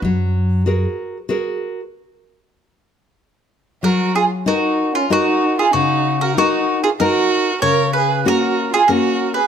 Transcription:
<<
  \new Staff \with { instrumentName = "Mandolin" } { \time 3/4 \key fis \major \tempo 4 = 95 r2. | r2. | ais'8 gis'8 fis'8. eis'16 fis'8. gis'16 | fis'8. ais'16 fis'8. gis'16 ais'4 |
cis''8 b'8 ais'8. gis'16 ais'8. b'16 | }
  \new Staff \with { instrumentName = "Nylon-string guitar" } { \time 3/4 \key fis \major fis4 <fis' gis' ais'>4 <fis' gis' ais'>4 | r2. | fis4 <dis' fis' ais'>4 <dis' fis' ais'>4 | cis4 <dis' fis' ais'>4 <dis' fis' ais'>4 |
cis4 <ais cis' fis'>4 <ais cis' fis'>4 | }
  \new Staff \with { instrumentName = "Violin" } { \time 3/4 \key fis \major r2. | r2. | fis'8 eis'8 dis'8. cis'16 dis'8. eis'16 | dis'8. fis'16 dis'8. eis'16 fis'4 |
ais'8 gis'8 fis'8. eis'16 fis'8. gis'16 | }
  \new Staff \with { instrumentName = "Upright bass" } { \clef bass \time 3/4 \key fis \major fis,2 r4 | r2. | r2. | r2. |
r2. | }
>>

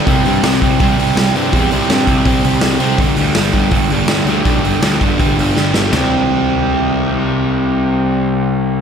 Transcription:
<<
  \new Staff \with { instrumentName = "Distorted electric guitar" } { \clef bass \time 4/4 \key g \mixolydian \tempo 4 = 164 <c g c'>8 <c g c'>8 <c g c'>8 <c g c'>8 <c g c'>8 <c g c'>8 <c g c'>8 <c g c'>8 | <c g c'>8 <c g c'>8 <c g c'>8 <c g c'>8 <c g c'>8 <c g c'>8 <c g c'>8 <c g c'>8 | <g, d g>8 <g, d g>8 <g, d g>8 <g, d g>8 <g, d g>8 <g, d g>8 <g, d g>8 <g, d g>8 | <g, d g>8 <g, d g>8 <g, d g>8 <g, d g>8 <g, d g>8 <g, d g>8 <g, d g>8 <g, d g>8 |
<c g c'>1~ | <c g c'>1 | }
  \new Staff \with { instrumentName = "Distorted electric guitar" } { \clef bass \time 4/4 \key g \mixolydian <c g c'>1 | <c g c'>1 | r1 | r1 |
r1 | r1 | }
  \new Staff \with { instrumentName = "Overdriven electric guitar" } { \clef bass \time 4/4 \key g \mixolydian <c g c'>8 <c g c'>8 <c g c'>8 <c g c'>8 <c g c'>8 <c g c'>8 <c g c'>8 <c g c'>8 | <c g c'>8 <c g c'>8 <c g c'>8 <c g c'>8 <c g c'>8 <c g c'>8 <c g c'>8 <c g c'>8 | <g, d g>8 <g, d g>8 <g, d g>8 <g, d g>8 <g, d g>8 <g, d g>8 <g, d g>8 <g, d g>8 | <g, d g>8 <g, d g>8 <g, d g>8 <g, d g>8 <g, d g>8 <g, d g>8 <g, d g>8 <g, d g>8 |
<c g c'>1~ | <c g c'>1 | }
  \new Staff \with { instrumentName = "Picked electric bass" } { \clef bass \time 4/4 \key g \mixolydian c,8 g,8 c,8 c,8 c,8 c,8 c,8 g,8 | e,8 c,8 g,8 c,8 c,8 c,8 c,8 c,8 | g,,8 d,8 g,,8 g,,8 g,,8 g,,8 g,,8 d,8 | b,,8 g,,8 d,8 g,,8 g,,8 g,,8 g,,8 g,,8 |
c,1~ | c,1 | }
  \new DrumStaff \with { instrumentName = "Drums" } \drummode { \time 4/4 <hho bd>8 hho8 <hho sn>8 <hho bd>8 <hho bd>8 hho8 <hho sn>8 hho8 | <hho bd>8 hho8 <hho sn>8 <hho bd>8 <hho bd>8 hho8 <hho sn>8 hho8 | <hho bd>8 hho8 <hho sn>8 <hho bd>8 <hho bd>8 hho8 <hho sn>8 hho8 | <hho bd>8 hho8 <hho sn>8 <hho bd>8 <hho bd>8 hho8 sn8 sn8 |
<rb sn tomfh>4 r4 r4 r4 | r4 r4 r4 r4 | }
>>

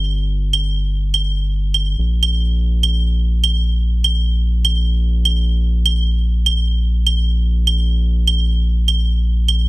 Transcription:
<<
  \new Staff \with { instrumentName = "Analog synth bass" } { \clef bass \time 4/4 \key g \minor \tempo 4 = 124 g,,1 | bes,,1~ | bes,,1~ | bes,,1~ |
bes,,1 | }
  \new DrumStaff \with { instrumentName = "Drums" } \drummode { \time 4/4 r4 cl4 r16 cl8. r8 cl8 | r8 cl8 r8. cl16 r4 cl4 | r16 cl8. r8 cl8 r8. cl16 r4 | cl4 r16 cl8. r8 cl8 r8. cl16 |
r4 cl4 r16 cl8. r8 cl8 | }
>>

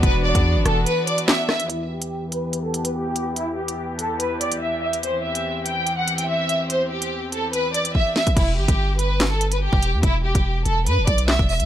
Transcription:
<<
  \new Staff \with { instrumentName = "Violin section" } { \time 4/4 \key e \minor \tempo 4 = 144 b'8 d''4 a'8 b'8 d''8 e''8 e''8 | e'8 g'4 b'8. a'8 b'16 g'4 | e'8 g'4 a'8 b'8 d''8 e''8 e''8 | c''8 e''4 g''8. fis''8 g''16 e''4 |
c''8 g'4 a'8 b'8 d''8 e''8 e''8 | e'8 g'4 b'8. a'8 b'16 g'4 | e'8 g'4 a'8 b'8 d''8 e''8 e''8 | }
  \new Staff \with { instrumentName = "String section" } { \time 4/4 \key e \minor << { <e b fis'>1 | <e, e g'>1~ | <e, e g'>1~ | <e, e g'>1~ |
<e, e g'>1 | r1 | r1 | } \\ { d'1 | b1~ | b1 | c'1~ |
c'1 | r1 | r1 | } >> }
  \new Staff \with { instrumentName = "808-style bass" } { \clef bass \time 4/4 \key e \minor e,,8. e,8 g,,16 e,,8 r2 | r1 | r1 | r1 |
r1 | e,,8 g,,16 g,,2~ g,,8 e,,8 e,16 | e,,8. e,,8. e,,8 g,16 e,,16 b,,8. e,,8 e,16 | }
  \new DrumStaff \with { instrumentName = "Drums" } \drummode { \time 4/4 <hh bd>8. <hh bd>16 r8 <hh ss>8 hh8 hh16 hh16 <hc sn>8 <ss sn>16 hh16 | hh8. hh16 r8 hh8 hh8 hh16 hh16 r8 hh8 | hh8. hh16 r8 hh8 hh8 hh16 hh16 r8. hh16 | hh8. hh16 r8 hh8 hh8 hh16 hh16 r8 hh8 |
hh8. hh16 r8 hh8 hh8 hh16 hh16 bd8 sn16 <hh bd>16 | <cymc hh bd>8. <hh bd>16 r8 hh8 <hc hh sn>8 hh16 hh16 r16 bd16 hh8 | <hh bd>8. <hh bd>16 r8 hh8 hh8 <hh bd>16 hh16 <hc sn>16 bd16 hho16 hh16 | }
>>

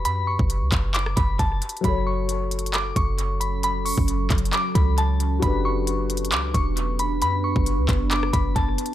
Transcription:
<<
  \new Staff \with { instrumentName = "Synth bell" } { \time 4/4 \key g \lydian \tempo 4 = 134 b''8 cis'''4. d'''8 b''8 a''8 r8 | b''8 cis'''4. d'''8 cis'''4 b''8 | b''8 cis'''4. d'''8 b''8 a''8 r8 | b''8 cis'''4. d'''8 cis'''4 b''8 |
b''8 cis'''4. d'''8 b''8 a''8 r8 | }
  \new Staff \with { instrumentName = "Grand piano" } { \time 4/4 \key g \lydian <d' fis' g' b'>1 | <fis fis' a' cis''>1~ | <fis fis' a' cis''>1 | <d' fis' g' b'>1~ |
<d' fis' g' b'>1 | }
  \new Staff \with { instrumentName = "Ambient pad" } { \time 4/4 \key g \lydian r1 | <fis cis' a'>1~ | <fis cis' a'>1 | <b d' b'>1~ |
<b d' b'>1 | }
  \new Staff \with { instrumentName = "808-style bass" } { \clef bass \time 4/4 \key g \lydian fis,8. fis,,8 cis,16 fis,,4 fis,,8 fis,,8 r8 | fis,,2~ fis,,8 fis,,4.~ | fis,,8. fis,,8. fis,,8 r8 cis,4. | fis,,2 cis,8 e,,4. |
fis,8. fis,,8 cis,16 fis,,4 fis,,8 fis,,8 r8 | }
  \new DrumStaff \with { instrumentName = "Drums" } \drummode { \time 4/4 hh8. bd16 hh8 <hc hh bd>8 <hc hh>16 ss16 <hh bd>8 \tuplet 3/2 { <hh bd>16 r16 r16 hh16 hh16 hh16 } | <hh bd>4 \tuplet 3/2 { hh16 r16 r16 hh16 hh16 hh16 } <hc hh>8 <hh bd>8 hh8 hh8 | hh8 hho16 bd16 \tuplet 3/2 { hh16 r16 r16 <hc hh bd>16 hh16 hh16 } <hc hh>8 <hh bd>8 hh8 hh8 | <hh bd>4 \tuplet 3/2 { hh16 r16 r16 hh16 hh16 hh16 } <hc hh>8 <hh bd>8 hh8 hh8 |
hh8. bd16 hh8 <hc hh bd>8 <hc hh>16 ss16 <hh bd>8 \tuplet 3/2 { <hh bd>16 r16 r16 hh16 hh16 r16 } | }
>>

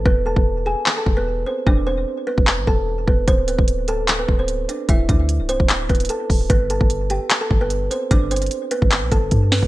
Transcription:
<<
  \new Staff \with { instrumentName = "Kalimba" } { \time 4/4 \key e \phrygian \tempo 4 = 149 <b b'>8 <a' a''>4 <gis' gis''>8. <a' a''>8 <b b'>8. <c' c''>8 | <d' d''>8 <c' c''>4 <b b'>8 r8 <a' a''>4 <b b'>8 | <c' c''>8 <b b'>4 <a' a''>8. <b b'>8 <c' c''>8. <d' d''>8 | <e' e''>8 <d' d''>4 <c' c''>8 r8 <b b'>8 <a' a''>8 r8 |
<b b'>8 <a' a''>4 <g' g''>8. <a' a''>8 <b b'>8. <c' c''>8 | <d' d''>8 <c' c''>4 <b b'>8 r8 <a' a''>4 <b b'>8 | }
  \new Staff \with { instrumentName = "808-style bass" } { \clef bass \time 4/4 \key e \phrygian e,,8. e,,4 r8. e,,4 r8 | e,,4 r8. e,,8 gis,,16 e,,4 e,,8 | d,,8. d,,4.~ d,,16 d,,4 r8 | d,,8 d,8. c,,8 d,,8. d,,8 r8 d,,8 |
g,,8. g,,4 r8. g,,4 r8 | g,,4 r8. g,,8 b,,16 g,,8 g,8. g,,16 | }
  \new DrumStaff \with { instrumentName = "Drums" } \drummode { \time 4/4 bd8. bd16 r4 hc8 bd8 r4 | bd4 r8. bd16 hc8 bd8 r8 bd8 | <hh bd>8 hh16 bd16 hh8 hh8 <hc hh>8 bd8 hh8 hh8 | <hh bd>8 <hh bd>8 hh8 hh16 bd16 <hc hh>8 <hh bd>32 hh32 hh32 hh32 hh8 <hho bd>8 |
<hh bd>8 hh16 bd16 hh8 hh8 <hc hh>8 bd8 hh8 hh8 | <hh bd>8 hh32 hh32 hh32 hh32 hh8 hh16 bd16 <hc hh>8 <hh bd>8 <hh bd>8 <hho sn>16 bd16 | }
>>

